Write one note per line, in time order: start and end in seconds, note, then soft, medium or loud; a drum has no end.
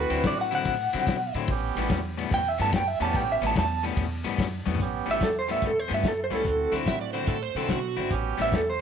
0.00 0.55 C4 medium
0.00 0.56 E4 medium
0.00 0.56 F#4 loud
0.00 0.24 B4 medium
0.10 0.23 D2 loud
0.10 0.33 D3 medium
0.10 0.33 F#3 medium
0.10 0.33 C4 medium
0.10 0.33 E4 medium
0.10 snare soft
0.10 ride medium
0.23 0.62 A2 medium
0.23 0.39 D5 medium
0.23 kick medium
0.23 snare loud
0.23 ride loud
0.41 0.53 F#5 medium
0.51 0.74 D3 medium
0.51 0.74 F#3 medium
0.51 0.74 C4 medium
0.51 0.74 E4 medium
0.51 snare soft
0.51 ride medium
0.55 1.34 F#5 loud
0.65 0.91 A2 medium
0.65 kick medium
0.65 snare soft
0.65 ride medium
0.93 1.06 C3 loud
0.93 1.16 D3 medium
0.93 1.16 F#3 medium
0.93 1.16 C4 loud
0.93 1.15 E4 medium
0.93 snare soft
0.93 ride medium
1.07 1.32 B2 medium
1.07 kick medium
1.07 snare loud
1.07 ride medium
1.34 1.47 A2 loud
1.34 1.49 D3 medium
1.34 1.49 F#3 medium
1.34 1.49 C4 medium
1.34 1.49 E4 medium
1.34 snare soft
1.34 ride medium
1.48 1.74 A1 medium
1.48 2.01 B3 loud
1.48 2.02 C#4 medium
1.48 2.02 G4 loud
1.48 kick medium
1.48 snare soft
1.48 ride medium
1.76 1.88 A1 medium
1.76 1.99 A2 medium
1.76 1.99 G3 medium
1.76 1.99 B3 loud
1.76 1.99 C#4 loud
1.76 snare soft
1.76 ride medium
1.89 2.27 E2 medium
1.89 kick loud
1.89 snare loud
1.89 ride medium
2.18 2.40 A2 medium
2.18 2.40 G3 medium
2.18 2.40 B3 medium
2.18 2.39 C#4 medium
2.18 snare soft
2.18 ride medium
2.31 2.56 E2 medium
2.31 2.48 G5 loud
2.31 kick medium
2.31 snare soft
2.31 ride medium
2.48 2.60 E5 medium
2.58 2.72 G2 loud
2.58 2.81 A2 medium
2.58 2.81 G3 medium
2.58 2.81 B3 medium
2.58 2.81 C#4 loud
2.58 2.74 A5 loud
2.58 snare soft
2.58 ride medium
2.73 2.88 G5 medium
2.73 kick medium
2.73 snare loud
2.73 ride medium
2.88 3.00 E5 medium
3.00 3.12 E2 medium
3.00 3.22 A2 medium
3.00 3.22 G3 medium
3.00 3.22 B3 medium
3.00 3.47 B3 medium
3.00 3.22 C#4 medium
3.00 3.48 C#4 medium
3.00 3.48 G4 medium
3.00 3.16 A5 medium
3.00 snare soft
3.00 ride medium
3.14 3.39 A1 medium
3.14 3.29 G5 loud
3.14 kick medium
3.14 snare soft
3.14 ride medium
3.32 3.43 E5 medium
3.42 3.54 A1 medium
3.42 3.64 A2 medium
3.42 3.64 G3 medium
3.42 3.64 B3 medium
3.42 3.64 C#4 loud
3.42 snare soft
3.42 ride medium
3.47 3.57 A5 loud
3.56 3.93 E2 loud
3.56 3.84 A5 loud
3.56 kick medium
3.56 snare loud
3.56 ride medium
3.83 4.05 A2 medium
3.83 4.05 G3 medium
3.83 4.05 B3 medium
3.83 4.05 C#4 medium
3.83 snare soft
3.83 ride medium
3.96 4.22 E2 loud
3.96 kick loud
3.96 snare soft
3.96 ride medium
4.24 4.37 G2 loud
4.24 4.47 A2 medium
4.24 4.47 G3 medium
4.24 4.46 B3 medium
4.24 4.46 C#4 loud
4.24 snare soft
4.24 ride medium
4.38 4.63 F#2 loud
4.38 kick medium
4.38 snare loud
4.38 ride medium
4.66 4.78 E2 loud
4.66 4.80 A2 medium
4.66 4.80 G3 medium
4.66 4.79 B3 medium
4.66 4.79 C#4 medium
4.66 high tom medium
4.75 floor tom medium
4.79 5.05 A1 medium
4.79 5.32 B3 medium
4.79 5.32 C#4 medium
4.79 5.32 G4 loud
4.79 kick medium
4.79 snare soft
4.79 closed hi-hat medium
5.06 5.19 A1 medium
5.06 5.29 A2 medium
5.06 5.29 G3 medium
5.06 5.29 B3 medium
5.06 5.28 C#4 medium
5.06 snare soft
5.06 closed hi-hat medium
5.11 5.22 E5 medium
5.20 5.58 E2 medium
5.20 5.35 A4 medium
5.20 kick medium
5.20 snare loud
5.20 closed hi-hat medium
5.39 5.50 C5 medium
5.48 5.71 A2 medium
5.48 5.70 G3 medium
5.48 5.71 B3 medium
5.48 5.70 C#4 medium
5.48 5.63 E5 medium
5.48 snare soft
5.48 closed hi-hat medium
5.62 5.87 E2 medium
5.62 kick medium
5.62 snare soft
5.62 closed hi-hat medium
5.67 5.79 A4 medium
5.79 5.91 C5 medium
5.88 6.03 G2 medium
5.88 6.12 A2 medium
5.88 6.12 G3 medium
5.88 6.11 B3 medium
5.88 6.11 C#4 medium
5.88 snare soft
5.88 closed hi-hat medium
5.94 6.05 E5 medium
6.03 6.29 F#2 medium
6.03 kick medium
6.03 snare loud
6.03 closed hi-hat medium
6.08 6.19 A4 medium
6.24 6.35 C5 medium
6.30 6.43 C#2 medium
6.30 6.45 A2 medium
6.30 6.45 G3 medium
6.30 6.45 B3 medium
6.30 6.44 C#4 medium
6.30 6.45 C#4 medium
6.30 6.44 E4 medium
6.30 snare soft
6.30 closed hi-hat medium
6.35 6.73 A4 medium
6.44 6.70 D2 medium
6.44 7.17 C4 medium
6.44 7.17 E4 medium
6.44 7.17 F#4 medium
6.44 kick medium
6.44 snare soft
6.44 closed hi-hat medium
6.72 6.85 D2 medium
6.72 6.95 D3 medium
6.72 6.95 C4 medium
6.72 6.95 E4 medium
6.72 6.94 F#4 medium
6.72 snare soft
6.72 closed hi-hat medium
6.86 7.24 A2 medium
6.86 7.01 E5 medium
6.86 kick medium
6.86 snare loud
6.86 closed hi-hat medium
7.01 7.13 D5 medium
7.13 7.37 D3 medium
7.13 7.36 C4 medium
7.13 7.36 E4 medium
7.13 7.36 F#4 medium
7.13 7.27 C5 medium
7.13 snare soft
7.13 closed hi-hat medium
7.27 7.53 A2 medium
7.27 7.41 A4 medium
7.27 kick medium
7.27 snare soft
7.27 closed hi-hat medium
7.42 7.56 C5 medium
7.55 7.68 C3 medium
7.55 7.78 D3 medium
7.55 7.78 C4 medium
7.55 7.78 E4 medium
7.55 7.78 F#4 medium
7.55 7.70 A4 medium
7.55 snare soft
7.55 closed hi-hat medium
7.68 7.95 B2 medium
7.68 8.10 F#4 loud
7.68 kick medium
7.68 snare loud
7.68 closed hi-hat medium
7.97 8.09 G#1 medium
7.97 8.11 D3 medium
7.97 8.11 C4 medium
7.97 8.11 E4 medium
7.97 8.11 F#4 medium
7.97 snare soft
7.97 closed hi-hat medium
8.10 8.36 A1 medium
8.10 8.64 B3 medium
8.10 8.64 C#4 medium
8.10 8.64 G4 loud
8.10 kick medium
8.10 snare soft
8.10 closed hi-hat medium
8.37 8.51 A1 medium
8.37 8.61 A2 medium
8.37 8.61 G3 medium
8.37 8.60 B3 medium
8.37 8.60 C#4 medium
8.37 snare soft
8.37 closed hi-hat medium
8.42 8.54 E5 medium
8.52 8.81 E2 medium
8.52 kick medium
8.52 snare loud
8.52 closed hi-hat medium
8.56 8.68 A4 medium
8.70 8.81 C5 medium